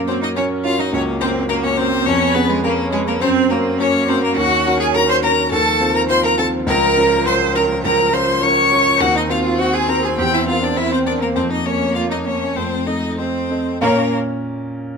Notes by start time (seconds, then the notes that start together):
Already playing: F#2 A#3
0.07 C4 C#4 F#4 A#4 C5
0.21 D#4 D#5
0.36 C#4 F#4 A#4 C#5
0.64 C#4 F4 F#4 A#4 F5
0.78 D#4 D#5
0.92 C#2 A#3 C#4 C#5
1.21 C4 C#4 F#4 A#4 C5
1.49 A#3 C#4 F#4 A#4
1.64 C#4 C#5
1.77 C4 C#4 F#4 A#4 C5
2.06 F2 B3 C#4 C#5
2.34 B3 C#4 G#4 B4
2.50 G#3 G#4
2.63 A#3 C#4 G#4 A#4 B4
2.92 G#3 C#4 G#4 B4
3.07 A#3 A#4
3.21 F#2 C4 C5
3.50 A#3 C#4 F#4 A#4
3.78 A#3 C#4 F#4 A#4 C#5
4.08 C4 C#4 F#4 A#4 C5
4.22 A#3 A#4
4.37 D#2 C#4 F#4 F#5
4.66 C#4 F#4 A#4
4.80 G#4 G#5
4.94 C#4 F#4 A#4 A#5
5.09 C5 C6
5.23 C#4 F#4 A#4 A#5
5.51 D#2 F3 A4 A5
5.80 C4 F4 C5
5.94 A#4 A#5
6.09 C4 F4 C5 C6
6.24 A#4 A#5
6.38 C4 F4 A4 C5 A5
6.67 C#2 A#4 A#5
6.97 C#4 F4 A#4
7.26 C#4 F4 A#4 C5 C6
7.55 C#4 F4 A#4 A#5
7.84 C#2 A#4 A#5
8.13 C#4 F4 A#4 C5 C6
8.42 C#4 F4 A#4 C#5 C#6
8.72 C#4 F4 A#4
9.00 D#2 C4 F#4 F#5
9.15 D#4 D#5
9.29 C4 F4 F#4 C5 F5
9.58 C4 F#4 C5 F#5
9.74 G#4 G#5
9.88 C4 F#4 A#4 C5 A#5
10.03 G#4 G#5
10.18 E2 G4 G5
10.32 E4 E5
10.47 C4 F4 A#4 C5 F5
10.62 D4 D5
10.76 C4 E4 A#4 C5 E5
10.92 C4 C5
11.06 C4 D4 A#4 C5 D5
11.21 A#3 A#4
11.35 F2 A#3 C4 C5
11.50 D#4 D#5
11.65 A#3 C#4 A#4 C#5
11.95 A#3 F4 A#4 C#5 F5
12.10 D#4 D#5
12.26 A#3 C#4 A#4 C#5
12.56 F2 A3 C4 C5
12.87 C4 D#4 A4 D#5
13.18 C4 A4 C5 D#5
13.51 C4 A4 D#5
13.80 A#2 A#3 C#4 A#4 F5 A#5